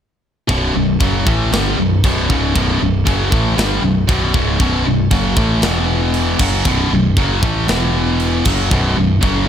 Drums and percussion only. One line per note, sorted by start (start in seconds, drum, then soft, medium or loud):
0.49 kick loud
0.49 china medium
1.00 kick loud
1.00 china medium
1.27 kick loud
1.53 snare loud
1.53 china medium
2.04 kick loud
2.04 china medium
2.30 kick loud
2.56 kick loud
2.56 china medium
3.07 kick loud
3.07 china medium
3.32 kick loud
3.58 snare loud
3.58 china medium
4.09 kick loud
4.09 china medium
4.34 kick loud
4.60 kick loud
4.60 china medium
5.11 kick loud
5.11 china medium
5.37 kick loud
5.62 snare loud
5.62 china medium
6.14 china medium
6.39 kick loud
6.39 crash loud
6.65 kick loud
6.65 china medium
7.17 kick loud
7.17 china medium
7.43 kick loud
7.68 snare loud
7.68 china medium
8.20 china medium
8.45 kick loud
8.45 crash loud
8.71 kick loud
8.71 china medium
9.23 kick loud
9.23 china medium